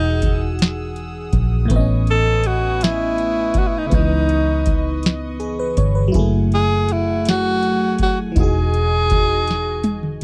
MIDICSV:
0, 0, Header, 1, 6, 480
1, 0, Start_track
1, 0, Tempo, 740741
1, 1100, Time_signature, 6, 3, 24, 8
1, 6635, End_track
2, 0, Start_track
2, 0, Title_t, "String section"
2, 0, Program_c, 0, 48
2, 0, Note_on_c, 0, 68, 73
2, 0, Note_on_c, 0, 78, 71
2, 0, Note_on_c, 0, 87, 69
2, 0, Note_on_c, 0, 88, 80
2, 1072, Note_off_c, 0, 78, 0
2, 1086, Note_off_c, 0, 88, 0
2, 1088, Note_off_c, 0, 68, 0
2, 1094, Note_on_c, 0, 85, 62
2, 1095, Note_on_c, 0, 71, 72
2, 1100, Note_on_c, 0, 80, 68
2, 2526, Note_off_c, 0, 80, 0
2, 2536, Note_on_c, 0, 75, 68
2, 3951, Note_off_c, 0, 85, 0
2, 3952, Note_off_c, 0, 71, 0
2, 3958, Note_off_c, 0, 87, 0
2, 3964, Note_off_c, 0, 75, 0
2, 3974, Note_on_c, 0, 78, 66
2, 3976, Note_on_c, 0, 57, 79
2, 3977, Note_on_c, 0, 80, 74
2, 5403, Note_off_c, 0, 78, 0
2, 5404, Note_off_c, 0, 57, 0
2, 5422, Note_on_c, 0, 75, 68
2, 5425, Note_on_c, 0, 66, 76
2, 6635, Note_off_c, 0, 66, 0
2, 6635, Note_off_c, 0, 75, 0
2, 6635, Note_off_c, 0, 80, 0
2, 6635, End_track
3, 0, Start_track
3, 0, Title_t, "Tenor saxophone"
3, 0, Program_c, 1, 66
3, 0, Note_on_c, 1, 63, 82
3, 395, Note_off_c, 1, 63, 0
3, 1363, Note_on_c, 1, 69, 105
3, 1597, Note_on_c, 1, 66, 91
3, 1607, Note_off_c, 1, 69, 0
3, 1836, Note_on_c, 1, 64, 96
3, 1846, Note_off_c, 1, 66, 0
3, 2322, Note_on_c, 1, 66, 77
3, 2331, Note_off_c, 1, 64, 0
3, 2380, Note_on_c, 1, 64, 80
3, 2389, Note_off_c, 1, 66, 0
3, 2449, Note_on_c, 1, 63, 69
3, 2459, Note_off_c, 1, 64, 0
3, 2502, Note_on_c, 1, 64, 70
3, 2512, Note_off_c, 1, 63, 0
3, 2555, Note_on_c, 1, 63, 86
3, 2564, Note_off_c, 1, 64, 0
3, 3267, Note_off_c, 1, 63, 0
3, 4239, Note_on_c, 1, 68, 105
3, 4485, Note_on_c, 1, 64, 89
3, 4494, Note_off_c, 1, 68, 0
3, 4713, Note_off_c, 1, 64, 0
3, 4728, Note_on_c, 1, 66, 103
3, 5168, Note_off_c, 1, 66, 0
3, 5200, Note_on_c, 1, 66, 93
3, 5303, Note_off_c, 1, 66, 0
3, 5444, Note_on_c, 1, 68, 107
3, 6606, Note_off_c, 1, 68, 0
3, 6635, End_track
4, 0, Start_track
4, 0, Title_t, "FM electric piano"
4, 0, Program_c, 2, 5
4, 0, Control_c, 2, 64, 127
4, 0, Note_on_c, 2, 52, 66
4, 0, Note_on_c, 2, 63, 62
4, 0, Note_on_c, 2, 66, 57
4, 0, Note_on_c, 2, 68, 77
4, 1059, Note_off_c, 2, 52, 0
4, 1071, Note_off_c, 2, 63, 0
4, 1072, Note_on_c, 2, 45, 83
4, 1082, Note_off_c, 2, 66, 0
4, 1089, Note_on_c, 2, 57, 73
4, 1093, Note_off_c, 2, 68, 0
4, 1108, Note_on_c, 2, 59, 70
4, 1109, Control_c, 2, 64, 0
4, 1123, Note_on_c, 2, 60, 53
4, 1140, Note_on_c, 2, 75, 86
4, 1154, Note_off_c, 2, 60, 0
4, 1167, Note_on_c, 2, 61, 72
4, 1229, Control_c, 2, 64, 127
4, 2500, Note_off_c, 2, 45, 0
4, 2505, Note_on_c, 2, 49, 65
4, 2509, Note_off_c, 2, 57, 0
4, 2518, Note_off_c, 2, 59, 0
4, 2526, Note_on_c, 2, 59, 57
4, 2534, Note_off_c, 2, 75, 0
4, 2548, Note_off_c, 2, 61, 0
4, 2549, Control_c, 2, 64, 0
4, 2556, Note_on_c, 2, 63, 58
4, 2575, Note_on_c, 2, 52, 74
4, 2656, Control_c, 2, 64, 127
4, 3497, Note_on_c, 2, 68, 60
4, 3613, Note_off_c, 2, 68, 0
4, 3625, Note_on_c, 2, 71, 72
4, 3737, Note_off_c, 2, 71, 0
4, 3743, Note_on_c, 2, 73, 70
4, 3856, Note_off_c, 2, 73, 0
4, 3857, Note_on_c, 2, 71, 62
4, 3937, Note_off_c, 2, 49, 0
4, 3939, Note_on_c, 2, 54, 79
4, 3947, Note_off_c, 2, 59, 0
4, 3962, Note_off_c, 2, 63, 0
4, 3966, Note_on_c, 2, 64, 76
4, 3972, Note_off_c, 2, 52, 0
4, 3988, Note_on_c, 2, 68, 79
4, 3990, Control_c, 2, 64, 0
4, 4011, Note_on_c, 2, 57, 87
4, 4086, Note_off_c, 2, 71, 0
4, 4118, Control_c, 2, 64, 127
4, 5374, Note_off_c, 2, 54, 0
4, 5387, Note_off_c, 2, 64, 0
4, 5390, Note_on_c, 2, 52, 69
4, 5398, Note_off_c, 2, 68, 0
4, 5410, Note_off_c, 2, 57, 0
4, 5415, Note_on_c, 2, 63, 65
4, 5430, Control_c, 2, 64, 0
4, 5439, Note_on_c, 2, 66, 62
4, 5463, Note_on_c, 2, 68, 74
4, 5529, Control_c, 2, 64, 127
4, 6635, Note_off_c, 2, 52, 0
4, 6635, Note_off_c, 2, 63, 0
4, 6635, Note_off_c, 2, 66, 0
4, 6635, Note_off_c, 2, 68, 0
4, 6635, End_track
5, 0, Start_track
5, 0, Title_t, "Fingered electric bass"
5, 0, Program_c, 3, 33
5, 0, Note_on_c, 3, 28, 99
5, 838, Note_off_c, 3, 28, 0
5, 862, Note_on_c, 3, 34, 90
5, 1077, Note_off_c, 3, 34, 0
5, 1107, Note_on_c, 3, 33, 109
5, 2518, Note_off_c, 3, 33, 0
5, 2543, Note_on_c, 3, 37, 110
5, 3716, Note_off_c, 3, 37, 0
5, 3744, Note_on_c, 3, 31, 93
5, 3958, Note_off_c, 3, 31, 0
5, 3984, Note_on_c, 3, 30, 105
5, 5396, Note_off_c, 3, 30, 0
5, 5422, Note_on_c, 3, 28, 101
5, 6595, Note_off_c, 3, 28, 0
5, 6635, End_track
6, 0, Start_track
6, 0, Title_t, "Drums"
6, 143, Note_on_c, 9, 42, 78
6, 148, Note_on_c, 9, 36, 86
6, 207, Note_off_c, 9, 42, 0
6, 213, Note_off_c, 9, 36, 0
6, 382, Note_on_c, 9, 42, 59
6, 403, Note_on_c, 9, 38, 103
6, 447, Note_off_c, 9, 42, 0
6, 468, Note_off_c, 9, 38, 0
6, 623, Note_on_c, 9, 42, 48
6, 688, Note_off_c, 9, 42, 0
6, 860, Note_on_c, 9, 42, 68
6, 861, Note_on_c, 9, 36, 79
6, 925, Note_off_c, 9, 42, 0
6, 926, Note_off_c, 9, 36, 0
6, 1101, Note_on_c, 9, 36, 117
6, 1101, Note_on_c, 9, 42, 89
6, 1165, Note_off_c, 9, 42, 0
6, 1166, Note_off_c, 9, 36, 0
6, 1342, Note_on_c, 9, 42, 55
6, 1407, Note_off_c, 9, 42, 0
6, 1578, Note_on_c, 9, 42, 78
6, 1643, Note_off_c, 9, 42, 0
6, 1820, Note_on_c, 9, 42, 58
6, 1841, Note_on_c, 9, 38, 105
6, 1885, Note_off_c, 9, 42, 0
6, 1906, Note_off_c, 9, 38, 0
6, 2062, Note_on_c, 9, 42, 47
6, 2126, Note_off_c, 9, 42, 0
6, 2293, Note_on_c, 9, 42, 66
6, 2298, Note_on_c, 9, 36, 88
6, 2358, Note_off_c, 9, 42, 0
6, 2363, Note_off_c, 9, 36, 0
6, 2537, Note_on_c, 9, 42, 84
6, 2539, Note_on_c, 9, 36, 123
6, 2601, Note_off_c, 9, 42, 0
6, 2604, Note_off_c, 9, 36, 0
6, 2779, Note_on_c, 9, 42, 53
6, 2844, Note_off_c, 9, 42, 0
6, 3018, Note_on_c, 9, 42, 80
6, 3025, Note_on_c, 9, 36, 85
6, 3083, Note_off_c, 9, 42, 0
6, 3089, Note_off_c, 9, 36, 0
6, 3259, Note_on_c, 9, 42, 62
6, 3280, Note_on_c, 9, 38, 103
6, 3324, Note_off_c, 9, 42, 0
6, 3345, Note_off_c, 9, 38, 0
6, 3499, Note_on_c, 9, 42, 51
6, 3564, Note_off_c, 9, 42, 0
6, 3739, Note_on_c, 9, 42, 71
6, 3741, Note_on_c, 9, 36, 85
6, 3803, Note_off_c, 9, 42, 0
6, 3805, Note_off_c, 9, 36, 0
6, 3980, Note_on_c, 9, 42, 84
6, 3982, Note_on_c, 9, 36, 115
6, 4045, Note_off_c, 9, 42, 0
6, 4047, Note_off_c, 9, 36, 0
6, 4224, Note_on_c, 9, 42, 48
6, 4289, Note_off_c, 9, 42, 0
6, 4462, Note_on_c, 9, 42, 75
6, 4527, Note_off_c, 9, 42, 0
6, 4700, Note_on_c, 9, 42, 64
6, 4721, Note_on_c, 9, 38, 101
6, 4765, Note_off_c, 9, 42, 0
6, 4786, Note_off_c, 9, 38, 0
6, 4942, Note_on_c, 9, 42, 51
6, 5007, Note_off_c, 9, 42, 0
6, 5174, Note_on_c, 9, 42, 66
6, 5180, Note_on_c, 9, 36, 83
6, 5239, Note_off_c, 9, 42, 0
6, 5245, Note_off_c, 9, 36, 0
6, 5417, Note_on_c, 9, 42, 85
6, 5420, Note_on_c, 9, 36, 124
6, 5482, Note_off_c, 9, 42, 0
6, 5485, Note_off_c, 9, 36, 0
6, 5662, Note_on_c, 9, 42, 54
6, 5726, Note_off_c, 9, 42, 0
6, 5896, Note_on_c, 9, 42, 81
6, 5906, Note_on_c, 9, 36, 93
6, 5960, Note_off_c, 9, 42, 0
6, 5971, Note_off_c, 9, 36, 0
6, 6140, Note_on_c, 9, 42, 64
6, 6159, Note_on_c, 9, 38, 51
6, 6205, Note_off_c, 9, 42, 0
6, 6224, Note_off_c, 9, 38, 0
6, 6373, Note_on_c, 9, 42, 51
6, 6376, Note_on_c, 9, 48, 86
6, 6438, Note_off_c, 9, 42, 0
6, 6440, Note_off_c, 9, 48, 0
6, 6499, Note_on_c, 9, 47, 67
6, 6564, Note_off_c, 9, 47, 0
6, 6635, End_track
0, 0, End_of_file